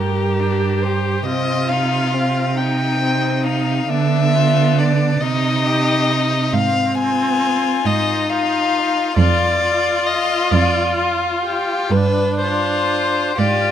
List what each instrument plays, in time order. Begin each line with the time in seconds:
Already playing: cello G2, violin G4 A#4, viola G4
0.40 violin D4
0.82 violin G4 C5
1.25 cello C3, violin C4 D#5, viola F4
1.69 violin D#4 F5
2.14 violin C4
2.57 viola D#4, violin D#4 G5
3.02 violin C4
3.45 violin D#4 F5
3.89 cello D3, viola B3, violin D4 E5
4.35 violin F4
4.78 violin D4 D5
5.21 cello C3, viola D#4, violin D#4 D#5
5.67 violin G4
6.11 violin D#4
6.53 cello G#2, viola C4, violin F5
6.95 violin F4 G#5
7.85 cello G#2, viola D#4, violin D#5
8.29 violin F4 F5
9.17 cello F2, viola F4, violin F4 D5
9.62 violin F4
10.07 violin D#5
10.51 cello F2, violin D5
10.98 violin F4
11.43 violin G4
11.90 cello G2, viola D4, violin B4
12.40 violin F4 C5
13.37 cello G#2, viola F4, violin G4 D5